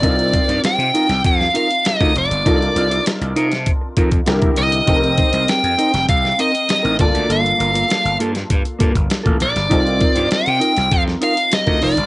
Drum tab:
HH |xxxxxxxxx-xxxxxx|xxxxxxxxx-xxxxxx|xxxxxxxxx-xxxxxx|xxxxxxxxxxxxxxxx|
SD |----o--o-o--o---|----o--o----o---|----o--o-o--o---|----o--o----o--o|
BD |o-o-----o----o--|o-------o-oo-o--|o-o-----o-----o-|--------o-oo-o--|

HH |xxxxxxxxx-xxxxox|
SD |----o--o-o--o---|
BD |o-o-----o----o--|